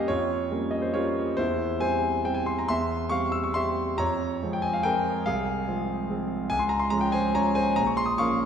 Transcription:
0.00 0.09 F2 medium
0.00 0.08 C#5 medium
0.00 0.10 G5 medium
0.08 0.50 F2 medium
0.08 0.69 F4 medium
0.08 0.72 C#5 medium
0.51 0.91 G3 soft
0.51 0.91 A#3 soft
0.51 0.91 C#4 soft
0.71 0.82 D#5 medium
0.82 0.93 C5 medium
0.94 1.34 G3 soft
0.94 1.34 A#3 soft
0.94 1.34 C#4 soft
0.94 1.35 F4 medium
0.94 1.37 C#5 medium
1.37 1.80 E2 medium
1.37 1.78 E4 medium
1.37 1.80 C5 medium
1.80 2.21 G3 soft
1.80 2.22 C4 medium
1.80 2.22 C5 medium
1.80 2.25 G#5 loud
2.25 2.65 G3 soft
2.25 2.65 C4 medium
2.25 2.36 G5 medium
2.34 2.46 G#5 medium
2.46 2.57 C6 medium
2.59 2.69 A#5 medium
2.68 3.10 E2 medium
2.68 3.09 E5 medium
2.68 3.11 C6 loud
3.09 3.51 G3 medium
3.09 3.51 C4 medium
3.09 3.32 F5 medium
3.09 3.32 C#6 loud
3.32 3.43 E6 medium
3.44 3.55 C#6 medium
3.54 3.95 G3 soft
3.54 3.95 C4 soft
3.54 3.96 E5 medium
3.54 3.98 C6 loud
3.98 4.40 F2 medium
3.98 4.49 C#5 medium
3.98 4.52 A#5 loud
4.43 4.81 F3 soft
4.43 4.81 G#3 medium
4.43 4.81 C4 medium
4.53 4.63 G5 medium
4.62 4.73 G#5 medium
4.73 4.84 F5 medium
4.83 5.23 F3 soft
4.83 5.23 G#3 soft
4.83 5.23 C4 medium
4.83 5.24 A#4 medium
4.83 5.26 G5 loud
5.26 5.67 C2 medium
5.26 6.07 G#4 medium
5.26 6.10 F5 medium
5.67 6.06 F3 soft
5.67 6.06 G#3 soft
5.67 6.06 C4 medium
6.09 6.47 F3 soft
6.09 6.48 G#3 soft
6.09 6.48 C4 medium
6.50 6.92 C#2 medium
6.50 6.61 G#5 loud
6.59 6.71 C6 medium
6.69 6.81 A#5 medium
6.79 6.92 C6 medium
6.90 7.31 F3 medium
6.90 7.31 G#3 soft
6.90 7.32 C#4 medium
6.90 7.03 A#5 loud
7.01 7.13 G5 medium
7.12 7.34 C5 medium
7.12 7.35 G#5 loud
7.35 7.73 F3 soft
7.35 7.73 G#3 soft
7.35 7.73 C#4 soft
7.35 7.55 C#5 medium
7.35 7.56 A#5 loud
7.55 7.75 C5 medium
7.55 7.76 G#5 loud
7.76 8.18 A#1 medium
7.76 7.87 A#5 loud
7.86 7.97 C#6 medium
7.97 8.08 C6 loud
8.06 8.18 D#6 medium
8.18 8.45 F3 soft
8.18 8.45 A#3 soft
8.18 8.45 C#4 medium
8.18 8.45 F5 medium
8.18 8.45 C#6 loud

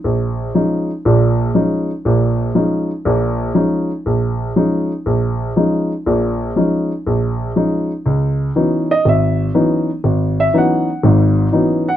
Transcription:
0.04 0.48 A#1 medium
0.55 0.90 F3 medium
0.55 0.90 G#3 soft
0.55 0.90 C#4 soft
0.55 0.90 D#4 medium
1.05 1.48 A#1 medium
1.05 1.49 A#2 medium
1.54 1.90 F3 soft
1.54 1.90 G#3 soft
1.54 1.90 C#4 soft
1.54 1.90 D#4 medium
2.05 2.49 A#1 medium
2.05 2.49 A#2 medium
2.55 2.90 F3 medium
2.55 2.90 G#3 soft
2.55 2.90 C#4 soft
2.55 2.90 D#4 medium
3.05 3.49 A#1 medium
3.05 3.49 A#2 medium
3.55 3.90 F3 medium
3.55 3.90 G#3 soft
3.55 3.90 C#4 soft
3.55 3.90 D#4 medium
4.06 4.49 A#1 medium
4.56 4.91 F3 soft
4.56 4.91 G#3 soft
4.56 4.91 C#4 soft
4.56 4.91 D#4 medium
5.06 5.49 A#1 medium
5.56 5.91 F3 medium
5.56 5.91 G#3 soft
5.56 5.91 C#4 soft
5.56 5.91 D#4 medium
6.06 6.49 A#1 medium
6.06 6.49 A#2 medium
6.56 6.91 F3 medium
6.56 6.91 G#3 soft
6.56 6.91 C#4 soft
6.56 6.91 D#4 medium
7.07 7.49 A#1 medium
7.56 7.90 F3 soft
7.56 7.90 G#3 soft
7.56 7.91 C#4 soft
7.56 7.91 D#4 medium
8.06 8.48 C#2 medium
8.56 8.90 E3 medium
8.56 8.90 F#3 soft
8.56 8.90 B3 soft
8.56 8.90 C#4 soft
8.56 8.90 D#4 medium
8.91 9.05 D#5 medium
9.05 9.48 G#1 medium
9.05 9.53 E5 medium
9.54 9.89 E3 medium
9.54 9.89 F#3 soft
9.54 9.89 B3 soft
9.54 9.89 C#4 soft
9.54 9.89 D#4 medium
10.04 10.47 G#1 medium
10.40 10.54 E5 medium
10.54 10.88 E3 medium
10.54 10.88 F#3 soft
10.54 10.88 B3 soft
10.54 10.89 C#4 soft
10.54 10.89 D#4 medium
10.58 11.02 F#5 medium
11.03 11.46 G#1 medium
11.03 11.46 G#2 medium
11.52 11.87 E3 medium
11.52 11.87 F#3 medium
11.52 11.87 B3 soft
11.52 11.87 C#4 soft
11.52 11.87 D#4 medium
11.88 11.97 F#5 medium

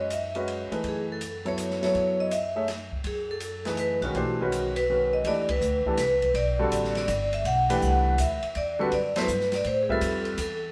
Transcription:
0.00 0.67 F#2 medium
0.00 0.10 D#5 medium
0.10 0.46 E5 medium
0.10 hi-hat pedal soft
0.10 ride medium
0.35 0.69 G#3 medium
0.35 0.70 C#4 medium
0.35 0.70 F#4 medium
0.35 0.70 B4 medium
0.35 0.70 D#5 medium
0.35 ride soft
0.48 ride medium
0.71 1.18 E3 soft
0.71 1.18 A3 soft
0.71 1.19 D#4 soft
0.71 1.19 G#4 soft
0.71 1.19 B4 medium
0.71 muted upright bass stroke soft
0.71 ride soft
0.83 1.90 F#2 medium
0.83 ride soft
0.89 0.99 G#4 medium
1.12 1.45 A4 medium
1.21 hi-hat pedal medium
1.21 ride medium
1.45 1.80 F#3 soft
1.45 1.80 B3 medium
1.45 1.80 E4 soft
1.45 1.80 A4 medium
1.45 1.80 C#5 medium
1.45 1.83 C#5 medium
1.45 ride soft
1.58 hi-hat pedal medium
1.58 ride medium
1.70 snare soft
1.82 2.29 F#3 medium
1.82 2.29 B3 soft
1.82 2.29 E4 medium
1.82 2.29 A4 soft
1.82 2.29 C#5 medium
1.82 2.21 C#5 medium
1.82 snare soft
1.82 ride soft
1.94 3.01 F#2 medium
1.94 ride soft
2.20 2.32 D#5 medium
2.31 2.66 E5 medium
2.31 hi-hat pedal medium
2.31 ride medium
2.56 2.67 A3 medium
2.56 2.67 D#4 soft
2.56 2.67 G#4 soft
2.56 2.67 C#5 soft
2.56 2.67 E5 medium
2.68 snare soft
2.68 ride medium
2.92 kick soft
3.04 3.98 F#2 medium
3.04 3.31 G#4 medium
3.04 ride medium
3.31 3.76 A4 medium
3.40 hi-hat pedal medium
3.40 ride medium
3.65 4.00 E3 medium
3.65 4.00 A3 soft
3.65 4.00 D#4 medium
3.65 4.01 G#4 medium
3.65 4.00 B4 medium
3.65 snare soft
3.65 ride soft
3.77 3.90 B4 medium
3.77 hi-hat pedal soft
3.77 ride medium
4.01 4.13 A#1 medium
4.01 4.14 D#3 medium
4.01 4.14 G#3 soft
4.01 4.14 C#4 medium
4.01 4.84 F#4 medium
4.01 4.14 F#4 medium
4.01 4.15 B4 medium
4.01 ride soft
4.14 5.21 B1 medium
4.14 4.37 E3 medium
4.14 4.38 A3 medium
4.14 4.37 D4 medium
4.14 4.38 G4 medium
4.14 4.38 C5 medium
4.14 ride soft
4.41 4.72 D#3 medium
4.41 4.72 G#3 medium
4.41 4.72 C#4 medium
4.41 4.72 F#4 medium
4.41 4.73 B4 medium
4.52 hi-hat pedal medium
4.52 ride medium
4.76 5.14 B4 medium
4.76 ride medium
4.89 5.26 D#3 soft
4.89 5.26 G#3 soft
4.89 5.26 C#4 soft
4.89 5.26 F#4 soft
4.89 5.25 B4 medium
5.13 5.26 D#5 medium
5.24 5.60 E2 medium
5.24 5.48 E3 medium
5.24 5.48 A3 medium
5.24 5.48 D4 soft
5.24 5.48 G4 soft
5.24 5.48 B4 medium
5.24 5.51 D5 medium
5.24 ride medium
5.49 5.98 B4 medium
5.49 kick medium
5.49 ride medium
5.61 5.84 D2 medium
5.61 hi-hat pedal medium
5.85 5.97 E3 medium
5.85 5.98 A3 medium
5.85 5.98 D4 medium
5.85 5.98 G4 medium
5.85 5.98 A4 medium
5.85 muted upright bass stroke soft
5.85 kick soft
5.97 6.33 C2 medium
5.97 6.33 B4 medium
5.97 snare soft
5.97 hi-hat pedal soft
5.97 ride medium
6.22 kick medium
6.22 ride soft
6.34 6.70 B1 medium
6.34 6.96 D5 medium
6.34 ride medium
6.59 7.06 D3 medium
6.59 7.06 G3 medium
6.59 7.06 C4 medium
6.59 7.06 F#4 medium
6.59 7.06 A4 medium
6.70 7.07 A1 medium
6.70 hi-hat pedal medium
6.70 ride medium
6.84 snare soft
6.95 7.34 D5 medium
6.95 snare soft
6.95 ride soft
7.08 7.44 G1 loud
7.08 hi-hat pedal medium
7.08 ride medium
7.33 7.45 E5 medium
7.33 ride soft
7.44 7.80 B1 medium
7.44 7.71 F#5 loud
7.44 ride medium
7.70 8.16 E3 medium
7.70 8.16 A3 medium
7.70 8.16 D4 medium
7.70 8.16 G4 medium
7.70 8.16 B4 medium
7.70 7.83 G5 loud
7.70 ride medium
7.81 8.17 C2 medium
7.81 8.20 F#5 medium
7.81 hi-hat pedal medium
8.18 8.41 D2 medium
8.18 8.57 E5 loud
8.18 hi-hat pedal medium
8.18 ride medium
8.43 muted upright bass stroke soft
8.43 ride soft
8.55 8.91 E2 medium
8.55 8.79 D5 medium
8.55 ride medium
8.79 8.90 D3 medium
8.79 8.91 G3 medium
8.79 8.91 C4 medium
8.79 8.91 F#4 medium
8.79 8.91 A4 medium
8.79 8.93 B4 medium
8.92 9.27 F#2 medium
8.92 9.15 D5 medium
8.92 ride medium
9.16 9.27 F#3 medium
9.16 9.27 B3 medium
9.16 9.27 E4 medium
9.16 9.28 A4 medium
9.16 9.55 B4 medium
9.16 9.27 C5 medium
9.16 snare medium
9.16 ride medium
9.28 9.63 G2 medium
9.28 hi-hat pedal medium
9.40 snare soft
9.52 9.67 D5 medium
9.52 snare soft
9.52 ride soft
9.64 10.00 A2 medium
9.64 9.81 C5 medium
9.64 ride medium
9.83 9.90 G#4 medium
9.89 10.36 G3 medium
9.89 10.36 C4 medium
9.89 10.36 F4 medium
9.89 10.36 A4 medium
9.89 10.36 B4 medium
9.89 10.36 E5 medium
9.89 kick soft
10.01 10.37 F2 medium
10.01 hi-hat pedal medium
10.01 ride medium
10.25 ride soft
10.37 10.72 E2 medium
10.37 10.72 A4 medium
10.37 hi-hat pedal medium
10.37 ride medium

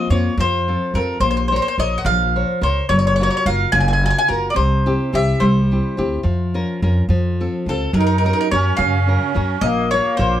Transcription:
0.00 0.11 A#3 medium
0.00 0.10 F4 medium
0.10 0.28 F2 medium
0.10 0.33 A#3 soft
0.10 0.32 C4 soft
0.10 0.33 F4 medium
0.10 0.36 C#5 medium
0.37 0.75 F2 loud
0.37 0.94 F3 medium
0.37 0.95 C5 medium
0.68 0.94 C4 soft
0.68 0.95 F4 soft
0.68 0.95 A4 soft
0.94 1.12 F2 medium
0.94 1.17 C4 soft
0.94 1.17 F4 soft
0.94 1.18 A4 soft
0.94 1.20 A#4 medium
1.20 1.58 A#1 medium
1.20 1.78 A#3 medium
1.20 1.29 C5 medium
1.31 1.36 C5 medium
1.37 1.45 C5 medium
1.48 1.77 A#4 soft
1.48 1.55 C5 medium
1.52 1.78 C5 soft
1.52 1.61 C5 medium
1.52 1.78 C#5 medium
1.62 1.67 C5 medium
1.68 1.75 C5 medium
1.78 1.96 A#1 medium
1.78 2.25 A#4 soft
1.78 2.25 C5 soft
1.78 2.25 C#5 soft
1.78 1.98 D#5 medium
1.98 2.05 F#5 medium
2.05 2.42 A#1 loud
2.05 2.61 F3 medium
2.05 2.65 F5 medium
2.36 2.60 A#4 soft
2.36 2.61 C5 soft
2.36 2.62 C#5 medium
2.61 2.80 C#2 medium
2.61 2.84 A#4 medium
2.61 2.84 C5 soft
2.61 2.88 C5 medium
2.61 2.85 C#5 medium
2.89 3.27 F#1 medium
2.89 3.45 F#3 medium
2.89 2.97 C#5 medium
2.99 3.06 C#5 medium
3.07 3.14 C#5 medium
3.16 3.45 F4 soft
3.16 3.22 C#5 medium
3.21 3.45 F#4 soft
3.21 3.46 A#4 medium
3.21 3.29 C#5 medium
3.30 3.36 C#5 medium
3.37 3.44 C#5 medium
3.46 3.64 F#1 medium
3.46 3.93 F4 soft
3.46 3.93 F#4 soft
3.46 3.93 A#4 soft
3.46 3.72 F5 loud
3.72 4.10 F#1 loud
3.72 4.30 C#3 medium
3.72 3.79 G#5 loud
3.80 3.87 G#5 medium
3.88 3.92 G#5 medium
3.93 4.03 G#5 medium
4.02 4.27 F4 soft
4.02 4.28 F#4 soft
4.02 4.28 A#4 soft
4.02 4.09 G#5 medium
4.11 4.17 G#5 medium
4.18 4.27 G#5 medium
4.28 4.48 F#1 medium
4.28 4.51 F4 medium
4.28 4.52 F#4 soft
4.28 4.50 A#4 medium
4.28 4.52 A#4 medium
4.50 4.56 D5 medium
4.54 4.94 C2 medium
4.54 5.12 C3 medium
4.54 5.16 C5 medium
4.86 5.11 C4 medium
4.86 5.12 E4 soft
4.86 5.13 G4 medium
5.13 5.31 C2 medium
5.13 5.59 C4 medium
5.13 5.60 E4 soft
5.13 5.60 G4 medium
5.13 5.43 E5 medium
5.40 5.79 C2 medium
5.40 5.97 G3 medium
5.40 7.35 C5 medium
5.71 5.96 C4 soft
5.71 5.97 E4 soft
5.71 5.97 G4 soft
5.97 6.16 D2 medium
5.97 6.19 C4 soft
5.97 6.20 E4 soft
5.97 6.20 G4 soft
6.23 6.62 F2 medium
6.23 6.80 F3 medium
6.54 6.82 C#4 soft
6.54 6.82 F4 soft
6.54 6.82 A#4 medium
6.82 7.00 F2 medium
6.82 7.05 C#4 soft
6.82 7.05 F4 soft
6.82 7.05 A#4 soft
7.09 7.46 F2 medium
7.09 7.66 F3 medium
7.40 7.67 C4 soft
7.40 7.68 F4 soft
7.40 7.68 A4 soft
7.66 7.84 C#2 medium
7.66 7.90 C4 soft
7.66 7.90 F4 soft
7.66 7.93 A4 medium
7.66 7.90 A4 medium
7.93 8.31 F#2 medium
7.93 8.50 F#3 medium
7.93 8.49 D#4 medium
7.93 7.99 A#4 medium
8.00 8.05 A#4 medium
8.07 8.16 A#4 medium
8.18 8.25 A#4 medium
8.24 8.51 C#4 soft
8.24 8.52 F#4 soft
8.24 8.52 A#4 medium
8.24 8.32 A#4 medium
8.33 8.39 A#4 medium
8.41 8.48 A#4 medium
8.51 8.70 F#2 medium
8.51 8.98 C#4 soft
8.51 9.67 C#4 loud
8.51 8.98 F#4 soft
8.51 8.98 A#4 medium
8.51 8.77 C#5 medium
8.77 9.16 F#2 loud
8.77 9.35 C#3 medium
8.77 9.64 F5 medium
9.07 9.33 C#4 soft
9.07 9.34 F#4 soft
9.07 9.34 A#4 soft
9.34 9.54 F#2 medium
9.34 9.57 C#4 medium
9.34 9.57 F#4 soft
9.34 9.57 A#4 medium
9.61 9.99 A#1 medium
9.61 10.17 A#3 medium
9.61 10.40 A#3 loud
9.61 9.90 D#5 loud
9.91 10.17 F4 soft
9.91 10.18 A#4 soft
9.91 10.17 C#5 medium
9.91 10.18 C#5 medium
10.17 10.37 A#1 loud
10.17 10.40 F4 soft
10.17 10.40 A#4 soft
10.17 10.40 C5 medium
10.17 10.40 C#5 soft

